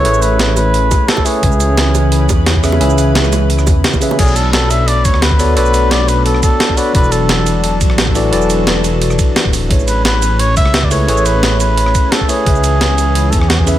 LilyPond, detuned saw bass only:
\new Staff \with { instrumentName = "Detuned saw bass" } { \clef bass \time 4/4 \key b \dorian \tempo 4 = 174 a,,2~ a,,8 r4. | cis,2~ cis,8 e,4. | cis,2~ cis,8 e,8 r4 | b,,2~ b,,8 d,4. |
b,,2~ b,,8 r4. | e,,2~ e,,8 a,,4. | e,,2~ e,,8 r8. d,,8. | a,,2~ a,,8 cis,4. |
a,,2~ a,,8 r4. | cis,2~ cis,8 e,4. | }